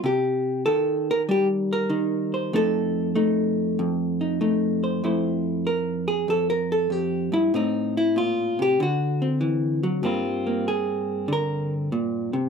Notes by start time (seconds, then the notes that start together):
0.04 C3 G4
0.66 D#3 A4
1.11 A#4
1.29 G3 G4
1.73 A#4
1.90 D#3 D#4
2.34 C5
2.53 F2 A3 D#4 A4
3.15 A3 D#4
3.79 F2
4.21 D#4
4.41 A3 D#4
4.84 C5
5.04 F2 A3 E4 C5
5.67 A#4
6.08 G#4
6.28 F2 A4
6.50 A#4
6.72 A4
6.90 F2 G4
7.32 G2 E4
7.54 A2 C4 D#4
7.97 E4
8.16 A#2 F4
8.59 C3 G4
8.80 D3 F#4
9.22 C4
9.41 E3
9.83 F#3
10.03 G2 G3 A#3 C4 F4
10.47 A#3
10.68 G#4
11.28 D3
11.33 A#4
11.92 A#2
12.33 C3